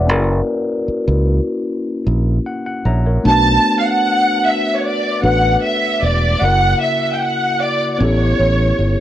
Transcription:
Already playing: B4 C#5 D5 E5 F#5
0.06 F#1 A#3 C#4 E4 F#4
0.11 A#4
0.88 muted fingered electric bass stroke
1.08 C#2
2.07 A#1
2.46 F#5
2.66 F#5
2.85 A#1 C#5 E5 A#5
3.06 A#4 C#5
3.23 B1 A3 B3 D4 F#4
3.28 B4 A5
3.79 F5
3.87 F#5
4.46 E5
4.76 C#5
4.85 D5
5.22 A1 A3 B3 D4 F#4 B4 F#5
5.63 E5
6.02 E1 D5
6.40 F#1 C#3 A#3 E4 F#5
6.44 F#4 A#4
6.81 E5
7.14 G5
7.21 F#5
7.61 D5
7.94 D5
7.98 A1 B3 C#4 E4 G4 C#5
8.04 A4
8.39 A1
8.79 G1

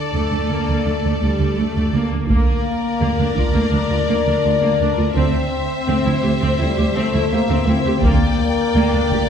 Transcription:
Already playing: D4 A4 D5
0.14 D2 A3
0.32 D2
0.50 D2 A#3
0.69 D2
0.86 D2 A3
1.04 D2
1.22 D2 G3
1.40 D2
1.57 D2 A3
1.76 D2
1.93 D2 A#3
2.12 D2
2.29 D2 A#3 A#4 D5, taiko
3.01 D2 A#3
3.19 D2 D4
3.36 D2 D4 F4, taiko
3.54 D2 A#3
3.72 D2 D4
3.90 D2 F4
4.08 D2 A#3
4.27 D2 D4
4.44 D2 F4
4.61 D2 A#3
4.80 D2 D4
4.96 D2 F4
5.15 D2 C4 C5 E5
5.87 D2 C4
6.04 D2 E4
6.22 D2 G4
6.41 D2 C4
6.58 D2 G3 E4
6.77 D2 G4
6.94 D2 A3 C4
7.14 D2 E4
7.31 D2 A#3 G4
7.49 D2 C4
7.66 D2 C4 E4
7.85 D2 G4
8.00 D2 A#3 D5 G5, taiko
8.75 D2 A#3
8.93 D2 D4
9.11 D2 G4, taiko

